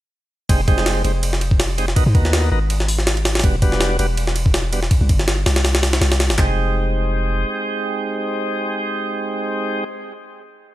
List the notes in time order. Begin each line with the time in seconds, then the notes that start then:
0.49 F1 G#3 C4 D#4 G4, kick, ride
0.68 G#3 C4 D#4 G4, kick, ride
0.78 snare
0.86 snare, ride
1.04 F1 G#3 C4 D#4 G4, ride
1.23 ride
1.33 snare
1.41 ride
1.51 kick
1.60 snare, ride
1.78 G#3 C4 D#4 G4, ride
1.88 snare
1.96 B3 D#4 F#4 A#4, kick, ride
2.06 G#2
2.15 D#2 B3 D#4 F#4 A#4, kick, ride
2.25 snare
2.33 snare, ride
2.52 G#1 B3 D#4 F#4 A#4
2.70 ride
2.80 snare
2.88 open hi-hat
2.99 snare
3.07 snare, ride
3.17 ride
3.25 snare, ride
3.35 snare, ride
3.39 snare, ride
3.44 E1 G3 B3 D4 F#4, kick, ride
3.62 G3 B3 D4 F#4, kick, ride
3.72 snare
3.81 snare, ride
3.99 E1 G3 B3 D4 F#4, ride
4.17 ride
4.27 snare
4.36 ride
4.46 kick
4.54 snare, ride
4.72 G3 B3 D4 F#4, ride
4.83 snare
4.91 kick, ride
5.01 C2
5.09 G1, kick, ride
5.19 snare
5.28 snare, ride
5.46 C2, snare, ride
5.56 snare, ride
5.65 snare, ride
5.75 snare, ride
5.83 snare, ride
5.93 snare, ride
6.01 C2, snare, ride
6.12 snare, ride
6.20 snare, ride
6.30 G1, snare, ride
6.38 F1 G#3 C4 D#4 G4, kick, clap